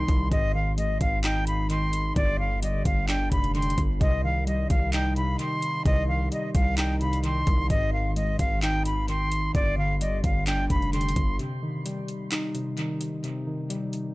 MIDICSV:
0, 0, Header, 1, 5, 480
1, 0, Start_track
1, 0, Key_signature, -3, "minor"
1, 0, Tempo, 461538
1, 329, Time_signature, 4, 2, 24, 8
1, 14709, End_track
2, 0, Start_track
2, 0, Title_t, "Flute"
2, 0, Program_c, 0, 73
2, 0, Note_on_c, 0, 84, 88
2, 299, Note_off_c, 0, 84, 0
2, 328, Note_on_c, 0, 75, 119
2, 547, Note_off_c, 0, 75, 0
2, 569, Note_on_c, 0, 77, 87
2, 787, Note_off_c, 0, 77, 0
2, 808, Note_on_c, 0, 75, 93
2, 1027, Note_off_c, 0, 75, 0
2, 1050, Note_on_c, 0, 77, 85
2, 1268, Note_off_c, 0, 77, 0
2, 1289, Note_on_c, 0, 79, 90
2, 1507, Note_off_c, 0, 79, 0
2, 1529, Note_on_c, 0, 83, 83
2, 1747, Note_off_c, 0, 83, 0
2, 1770, Note_on_c, 0, 84, 95
2, 2221, Note_off_c, 0, 84, 0
2, 2250, Note_on_c, 0, 74, 118
2, 2468, Note_off_c, 0, 74, 0
2, 2490, Note_on_c, 0, 77, 90
2, 2708, Note_off_c, 0, 77, 0
2, 2730, Note_on_c, 0, 75, 85
2, 2947, Note_off_c, 0, 75, 0
2, 2970, Note_on_c, 0, 77, 85
2, 3188, Note_off_c, 0, 77, 0
2, 3210, Note_on_c, 0, 79, 87
2, 3428, Note_off_c, 0, 79, 0
2, 3449, Note_on_c, 0, 83, 88
2, 3667, Note_off_c, 0, 83, 0
2, 3690, Note_on_c, 0, 84, 90
2, 3954, Note_off_c, 0, 84, 0
2, 4171, Note_on_c, 0, 75, 121
2, 4388, Note_off_c, 0, 75, 0
2, 4411, Note_on_c, 0, 77, 89
2, 4628, Note_off_c, 0, 77, 0
2, 4650, Note_on_c, 0, 75, 88
2, 4868, Note_off_c, 0, 75, 0
2, 4890, Note_on_c, 0, 77, 89
2, 5108, Note_off_c, 0, 77, 0
2, 5131, Note_on_c, 0, 79, 96
2, 5348, Note_off_c, 0, 79, 0
2, 5371, Note_on_c, 0, 83, 78
2, 5588, Note_off_c, 0, 83, 0
2, 5610, Note_on_c, 0, 84, 95
2, 6061, Note_off_c, 0, 84, 0
2, 6090, Note_on_c, 0, 75, 121
2, 6308, Note_off_c, 0, 75, 0
2, 6329, Note_on_c, 0, 77, 89
2, 6547, Note_off_c, 0, 77, 0
2, 6570, Note_on_c, 0, 75, 78
2, 6788, Note_off_c, 0, 75, 0
2, 6808, Note_on_c, 0, 77, 84
2, 7027, Note_off_c, 0, 77, 0
2, 7049, Note_on_c, 0, 79, 86
2, 7267, Note_off_c, 0, 79, 0
2, 7288, Note_on_c, 0, 83, 81
2, 7507, Note_off_c, 0, 83, 0
2, 7528, Note_on_c, 0, 84, 89
2, 7980, Note_off_c, 0, 84, 0
2, 8008, Note_on_c, 0, 75, 123
2, 8227, Note_off_c, 0, 75, 0
2, 8249, Note_on_c, 0, 77, 91
2, 8467, Note_off_c, 0, 77, 0
2, 8489, Note_on_c, 0, 75, 95
2, 8707, Note_off_c, 0, 75, 0
2, 8730, Note_on_c, 0, 77, 89
2, 8947, Note_off_c, 0, 77, 0
2, 8969, Note_on_c, 0, 79, 94
2, 9187, Note_off_c, 0, 79, 0
2, 9210, Note_on_c, 0, 83, 83
2, 9428, Note_off_c, 0, 83, 0
2, 9450, Note_on_c, 0, 84, 91
2, 9901, Note_off_c, 0, 84, 0
2, 9930, Note_on_c, 0, 74, 120
2, 10148, Note_off_c, 0, 74, 0
2, 10171, Note_on_c, 0, 77, 90
2, 10388, Note_off_c, 0, 77, 0
2, 10409, Note_on_c, 0, 75, 88
2, 10627, Note_off_c, 0, 75, 0
2, 10648, Note_on_c, 0, 77, 82
2, 10867, Note_off_c, 0, 77, 0
2, 10890, Note_on_c, 0, 79, 89
2, 11108, Note_off_c, 0, 79, 0
2, 11128, Note_on_c, 0, 83, 90
2, 11346, Note_off_c, 0, 83, 0
2, 11368, Note_on_c, 0, 84, 88
2, 11819, Note_off_c, 0, 84, 0
2, 14709, End_track
3, 0, Start_track
3, 0, Title_t, "Synth keys"
3, 0, Program_c, 1, 88
3, 0, Control_c, 1, 64, 127
3, 0, Note_on_c, 1, 48, 80
3, 0, Note_on_c, 1, 51, 81
3, 0, Note_on_c, 1, 55, 90
3, 0, Note_on_c, 1, 63, 99
3, 325, Note_on_c, 1, 44, 104
3, 328, Note_off_c, 1, 51, 0
3, 328, Note_off_c, 1, 63, 0
3, 330, Note_off_c, 1, 48, 0
3, 342, Control_c, 1, 64, 0
3, 347, Note_off_c, 1, 55, 0
3, 504, Control_c, 1, 64, 127
3, 568, Note_on_c, 1, 51, 83
3, 808, Note_on_c, 1, 56, 84
3, 1291, Note_on_c, 1, 63, 95
3, 1514, Note_off_c, 1, 44, 0
3, 1526, Note_on_c, 1, 44, 77
3, 1756, Note_off_c, 1, 51, 0
3, 1769, Note_on_c, 1, 51, 88
3, 2008, Note_off_c, 1, 56, 0
3, 2244, Note_on_c, 1, 43, 94
3, 2247, Note_off_c, 1, 44, 0
3, 2249, Note_off_c, 1, 51, 0
3, 2250, Note_off_c, 1, 63, 0
3, 2262, Control_c, 1, 64, 0
3, 2459, Control_c, 1, 64, 127
3, 2487, Note_on_c, 1, 50, 84
3, 2731, Note_on_c, 1, 55, 88
3, 3207, Note_on_c, 1, 62, 91
3, 3439, Note_off_c, 1, 43, 0
3, 3451, Note_on_c, 1, 43, 77
3, 3677, Note_off_c, 1, 50, 0
3, 3690, Note_on_c, 1, 50, 90
3, 3930, Note_off_c, 1, 55, 0
3, 4163, Note_on_c, 1, 48, 90
3, 4168, Note_off_c, 1, 62, 0
3, 4169, Note_off_c, 1, 50, 0
3, 4170, Note_off_c, 1, 43, 0
3, 4180, Control_c, 1, 64, 0
3, 4356, Control_c, 1, 64, 127
3, 4412, Note_on_c, 1, 51, 81
3, 4648, Note_on_c, 1, 55, 88
3, 5133, Note_on_c, 1, 63, 93
3, 5356, Note_off_c, 1, 48, 0
3, 5368, Note_on_c, 1, 48, 79
3, 5597, Note_off_c, 1, 51, 0
3, 5610, Note_on_c, 1, 51, 85
3, 5848, Note_off_c, 1, 55, 0
3, 6075, Note_off_c, 1, 48, 0
3, 6087, Note_on_c, 1, 48, 92
3, 6320, Note_off_c, 1, 51, 0
3, 6331, Note_off_c, 1, 63, 0
3, 6332, Note_on_c, 1, 51, 90
3, 6568, Note_on_c, 1, 55, 87
3, 7049, Note_on_c, 1, 63, 103
3, 7279, Note_off_c, 1, 48, 0
3, 7292, Note_on_c, 1, 48, 78
3, 7517, Note_off_c, 1, 51, 0
3, 7529, Note_on_c, 1, 51, 83
3, 7768, Note_off_c, 1, 55, 0
3, 8007, Note_on_c, 1, 44, 106
3, 8009, Note_off_c, 1, 51, 0
3, 8009, Note_off_c, 1, 63, 0
3, 8010, Note_off_c, 1, 48, 0
3, 8021, Control_c, 1, 64, 0
3, 8177, Control_c, 1, 64, 127
3, 8250, Note_on_c, 1, 51, 84
3, 8488, Note_on_c, 1, 56, 80
3, 8972, Note_on_c, 1, 63, 96
3, 9195, Note_off_c, 1, 44, 0
3, 9208, Note_on_c, 1, 44, 77
3, 9438, Note_off_c, 1, 51, 0
3, 9450, Note_on_c, 1, 51, 86
3, 9688, Note_off_c, 1, 56, 0
3, 9926, Note_on_c, 1, 43, 96
3, 9928, Note_off_c, 1, 44, 0
3, 9929, Note_off_c, 1, 51, 0
3, 9930, Note_off_c, 1, 63, 0
3, 9944, Control_c, 1, 64, 0
3, 10142, Control_c, 1, 64, 127
3, 10168, Note_on_c, 1, 50, 83
3, 10412, Note_on_c, 1, 55, 91
3, 10888, Note_on_c, 1, 62, 93
3, 11118, Note_off_c, 1, 43, 0
3, 11131, Note_on_c, 1, 43, 75
3, 11356, Note_off_c, 1, 50, 0
3, 11368, Note_on_c, 1, 50, 89
3, 11610, Note_off_c, 1, 55, 0
3, 11843, Note_on_c, 1, 48, 88
3, 11848, Note_off_c, 1, 50, 0
3, 11848, Note_off_c, 1, 62, 0
3, 11850, Note_off_c, 1, 43, 0
3, 11862, Control_c, 1, 64, 0
3, 12055, Control_c, 1, 64, 127
3, 12091, Note_on_c, 1, 51, 78
3, 12328, Note_on_c, 1, 55, 89
3, 12812, Note_on_c, 1, 63, 92
3, 13034, Note_off_c, 1, 48, 0
3, 13046, Note_on_c, 1, 48, 78
3, 13274, Note_off_c, 1, 51, 0
3, 13287, Note_on_c, 1, 51, 84
3, 13528, Note_off_c, 1, 55, 0
3, 13753, Note_off_c, 1, 48, 0
3, 13766, Note_on_c, 1, 48, 93
3, 13997, Note_off_c, 1, 51, 0
3, 14009, Note_on_c, 1, 51, 86
3, 14010, Note_off_c, 1, 63, 0
3, 14246, Note_on_c, 1, 55, 85
3, 14709, Note_off_c, 1, 48, 0
3, 14709, Note_off_c, 1, 51, 0
3, 14709, Note_off_c, 1, 55, 0
3, 14709, End_track
4, 0, Start_track
4, 0, Title_t, "808-style bass"
4, 0, Program_c, 2, 38
4, 88, Note_on_c, 2, 36, 103
4, 319, Note_off_c, 2, 36, 0
4, 328, Note_on_c, 2, 32, 113
4, 1020, Note_off_c, 2, 32, 0
4, 1048, Note_on_c, 2, 32, 103
4, 2207, Note_off_c, 2, 32, 0
4, 2248, Note_on_c, 2, 31, 118
4, 2940, Note_off_c, 2, 31, 0
4, 2969, Note_on_c, 2, 31, 106
4, 3430, Note_off_c, 2, 31, 0
4, 3450, Note_on_c, 2, 29, 107
4, 3910, Note_off_c, 2, 29, 0
4, 3929, Note_on_c, 2, 31, 103
4, 4159, Note_off_c, 2, 31, 0
4, 4169, Note_on_c, 2, 36, 114
4, 4860, Note_off_c, 2, 36, 0
4, 4889, Note_on_c, 2, 36, 102
4, 5580, Note_off_c, 2, 36, 0
4, 6089, Note_on_c, 2, 36, 115
4, 6550, Note_off_c, 2, 36, 0
4, 6809, Note_on_c, 2, 36, 103
4, 7731, Note_off_c, 2, 36, 0
4, 7769, Note_on_c, 2, 36, 105
4, 7999, Note_off_c, 2, 36, 0
4, 8008, Note_on_c, 2, 32, 111
4, 8700, Note_off_c, 2, 32, 0
4, 8728, Note_on_c, 2, 32, 102
4, 9887, Note_off_c, 2, 32, 0
4, 9929, Note_on_c, 2, 31, 109
4, 10620, Note_off_c, 2, 31, 0
4, 10649, Note_on_c, 2, 31, 104
4, 11109, Note_off_c, 2, 31, 0
4, 11129, Note_on_c, 2, 29, 109
4, 11590, Note_off_c, 2, 29, 0
4, 11609, Note_on_c, 2, 31, 102
4, 11839, Note_off_c, 2, 31, 0
4, 14709, End_track
5, 0, Start_track
5, 0, Title_t, "Drums"
5, 88, Note_on_c, 9, 42, 80
5, 89, Note_on_c, 9, 36, 97
5, 192, Note_off_c, 9, 42, 0
5, 193, Note_off_c, 9, 36, 0
5, 328, Note_on_c, 9, 36, 122
5, 329, Note_on_c, 9, 42, 76
5, 432, Note_off_c, 9, 36, 0
5, 433, Note_off_c, 9, 42, 0
5, 810, Note_on_c, 9, 42, 103
5, 914, Note_off_c, 9, 42, 0
5, 1047, Note_on_c, 9, 42, 86
5, 1048, Note_on_c, 9, 36, 98
5, 1151, Note_off_c, 9, 42, 0
5, 1152, Note_off_c, 9, 36, 0
5, 1288, Note_on_c, 9, 39, 126
5, 1288, Note_on_c, 9, 42, 100
5, 1392, Note_off_c, 9, 39, 0
5, 1392, Note_off_c, 9, 42, 0
5, 1528, Note_on_c, 9, 42, 78
5, 1632, Note_off_c, 9, 42, 0
5, 1765, Note_on_c, 9, 42, 75
5, 1869, Note_off_c, 9, 42, 0
5, 2007, Note_on_c, 9, 42, 81
5, 2111, Note_off_c, 9, 42, 0
5, 2248, Note_on_c, 9, 36, 119
5, 2249, Note_on_c, 9, 42, 76
5, 2352, Note_off_c, 9, 36, 0
5, 2353, Note_off_c, 9, 42, 0
5, 2731, Note_on_c, 9, 42, 99
5, 2835, Note_off_c, 9, 42, 0
5, 2968, Note_on_c, 9, 42, 86
5, 2969, Note_on_c, 9, 36, 98
5, 3072, Note_off_c, 9, 42, 0
5, 3073, Note_off_c, 9, 36, 0
5, 3209, Note_on_c, 9, 39, 123
5, 3209, Note_on_c, 9, 42, 97
5, 3313, Note_off_c, 9, 39, 0
5, 3313, Note_off_c, 9, 42, 0
5, 3449, Note_on_c, 9, 42, 78
5, 3450, Note_on_c, 9, 36, 91
5, 3553, Note_off_c, 9, 42, 0
5, 3554, Note_off_c, 9, 36, 0
5, 3576, Note_on_c, 9, 42, 46
5, 3680, Note_off_c, 9, 42, 0
5, 3690, Note_on_c, 9, 42, 48
5, 3769, Note_off_c, 9, 42, 0
5, 3769, Note_on_c, 9, 42, 63
5, 3849, Note_off_c, 9, 42, 0
5, 3849, Note_on_c, 9, 42, 86
5, 3929, Note_off_c, 9, 42, 0
5, 3929, Note_on_c, 9, 36, 95
5, 3929, Note_on_c, 9, 42, 82
5, 4033, Note_off_c, 9, 36, 0
5, 4033, Note_off_c, 9, 42, 0
5, 4169, Note_on_c, 9, 36, 124
5, 4170, Note_on_c, 9, 42, 76
5, 4273, Note_off_c, 9, 36, 0
5, 4274, Note_off_c, 9, 42, 0
5, 4651, Note_on_c, 9, 42, 101
5, 4755, Note_off_c, 9, 42, 0
5, 4888, Note_on_c, 9, 42, 87
5, 4889, Note_on_c, 9, 36, 101
5, 4992, Note_off_c, 9, 42, 0
5, 4993, Note_off_c, 9, 36, 0
5, 5128, Note_on_c, 9, 42, 96
5, 5129, Note_on_c, 9, 39, 127
5, 5232, Note_off_c, 9, 42, 0
5, 5233, Note_off_c, 9, 39, 0
5, 5370, Note_on_c, 9, 42, 80
5, 5474, Note_off_c, 9, 42, 0
5, 5607, Note_on_c, 9, 42, 80
5, 5711, Note_off_c, 9, 42, 0
5, 5849, Note_on_c, 9, 42, 83
5, 5953, Note_off_c, 9, 42, 0
5, 6089, Note_on_c, 9, 36, 122
5, 6090, Note_on_c, 9, 42, 74
5, 6193, Note_off_c, 9, 36, 0
5, 6194, Note_off_c, 9, 42, 0
5, 6571, Note_on_c, 9, 42, 99
5, 6675, Note_off_c, 9, 42, 0
5, 6808, Note_on_c, 9, 42, 88
5, 6809, Note_on_c, 9, 36, 102
5, 6912, Note_off_c, 9, 42, 0
5, 6913, Note_off_c, 9, 36, 0
5, 7048, Note_on_c, 9, 42, 97
5, 7049, Note_on_c, 9, 39, 125
5, 7152, Note_off_c, 9, 42, 0
5, 7153, Note_off_c, 9, 39, 0
5, 7289, Note_on_c, 9, 42, 65
5, 7393, Note_off_c, 9, 42, 0
5, 7416, Note_on_c, 9, 42, 66
5, 7520, Note_off_c, 9, 42, 0
5, 7525, Note_on_c, 9, 42, 78
5, 7629, Note_off_c, 9, 42, 0
5, 7768, Note_on_c, 9, 42, 84
5, 7769, Note_on_c, 9, 36, 100
5, 7872, Note_off_c, 9, 42, 0
5, 7873, Note_off_c, 9, 36, 0
5, 8009, Note_on_c, 9, 36, 123
5, 8009, Note_on_c, 9, 42, 74
5, 8113, Note_off_c, 9, 36, 0
5, 8113, Note_off_c, 9, 42, 0
5, 8490, Note_on_c, 9, 42, 99
5, 8594, Note_off_c, 9, 42, 0
5, 8728, Note_on_c, 9, 36, 100
5, 8728, Note_on_c, 9, 42, 85
5, 8832, Note_off_c, 9, 36, 0
5, 8832, Note_off_c, 9, 42, 0
5, 8968, Note_on_c, 9, 42, 96
5, 8969, Note_on_c, 9, 39, 123
5, 9072, Note_off_c, 9, 42, 0
5, 9073, Note_off_c, 9, 39, 0
5, 9209, Note_on_c, 9, 42, 80
5, 9313, Note_off_c, 9, 42, 0
5, 9446, Note_on_c, 9, 42, 74
5, 9550, Note_off_c, 9, 42, 0
5, 9688, Note_on_c, 9, 42, 82
5, 9792, Note_off_c, 9, 42, 0
5, 9929, Note_on_c, 9, 36, 121
5, 9929, Note_on_c, 9, 42, 77
5, 10033, Note_off_c, 9, 36, 0
5, 10033, Note_off_c, 9, 42, 0
5, 10411, Note_on_c, 9, 42, 100
5, 10515, Note_off_c, 9, 42, 0
5, 10648, Note_on_c, 9, 42, 82
5, 10649, Note_on_c, 9, 36, 97
5, 10752, Note_off_c, 9, 42, 0
5, 10753, Note_off_c, 9, 36, 0
5, 10888, Note_on_c, 9, 42, 96
5, 10889, Note_on_c, 9, 39, 125
5, 10992, Note_off_c, 9, 42, 0
5, 10993, Note_off_c, 9, 39, 0
5, 11129, Note_on_c, 9, 42, 80
5, 11130, Note_on_c, 9, 36, 92
5, 11233, Note_off_c, 9, 42, 0
5, 11234, Note_off_c, 9, 36, 0
5, 11256, Note_on_c, 9, 42, 47
5, 11360, Note_off_c, 9, 42, 0
5, 11369, Note_on_c, 9, 42, 49
5, 11449, Note_off_c, 9, 42, 0
5, 11449, Note_on_c, 9, 42, 65
5, 11529, Note_off_c, 9, 42, 0
5, 11529, Note_on_c, 9, 42, 85
5, 11609, Note_off_c, 9, 42, 0
5, 11609, Note_on_c, 9, 36, 97
5, 11609, Note_on_c, 9, 42, 83
5, 11713, Note_off_c, 9, 36, 0
5, 11713, Note_off_c, 9, 42, 0
5, 11850, Note_on_c, 9, 42, 71
5, 11954, Note_off_c, 9, 42, 0
5, 12331, Note_on_c, 9, 42, 98
5, 12435, Note_off_c, 9, 42, 0
5, 12568, Note_on_c, 9, 42, 86
5, 12672, Note_off_c, 9, 42, 0
5, 12808, Note_on_c, 9, 42, 93
5, 12809, Note_on_c, 9, 39, 123
5, 12912, Note_off_c, 9, 42, 0
5, 12913, Note_off_c, 9, 39, 0
5, 13049, Note_on_c, 9, 42, 74
5, 13153, Note_off_c, 9, 42, 0
5, 13285, Note_on_c, 9, 42, 74
5, 13389, Note_off_c, 9, 42, 0
5, 13527, Note_on_c, 9, 42, 78
5, 13631, Note_off_c, 9, 42, 0
5, 13768, Note_on_c, 9, 42, 72
5, 13872, Note_off_c, 9, 42, 0
5, 14250, Note_on_c, 9, 42, 99
5, 14354, Note_off_c, 9, 42, 0
5, 14488, Note_on_c, 9, 42, 82
5, 14592, Note_off_c, 9, 42, 0
5, 14709, End_track
0, 0, End_of_file